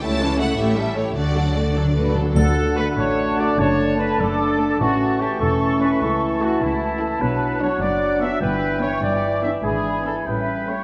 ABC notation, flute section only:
X:1
M:6/8
L:1/8
Q:3/8=99
K:D
V:1 name="Flute section"
z6 | z6 | f3 a3 | a3 d'3 |
c'6- | c'3 a3- | a3 f3 | g6 |
b3 e3 |]